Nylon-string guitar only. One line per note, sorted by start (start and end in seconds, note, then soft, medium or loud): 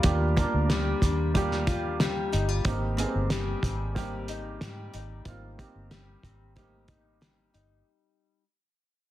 0.00 0.69 G3 medium
0.00 0.35 D4 soft
0.00 1.66 F4 medium
0.36 1.01 D4 soft
0.70 1.34 G3 medium
1.02 2.71 D4 soft
1.35 1.99 G3 medium
1.67 2.32 F4 medium
2.00 3.30 G3 medium
2.32 2.49 D#4 medium
2.49 2.71 F4 medium
2.97 3.63 C4 soft
3.30 3.96 G3 medium
3.64 5.59 C4 soft
3.96 4.61 G3 medium
4.29 4.93 D#4 medium
4.62 5.90 G3 medium
4.94 6.88 D#4 medium
5.59 6.23 C4 soft
5.91 6.55 G3 medium
6.24 8.43 C4 soft
6.56 7.21 G3 medium
6.88 7.53 D#4 medium
7.21 8.43 G3 soft
7.54 8.43 D#4 medium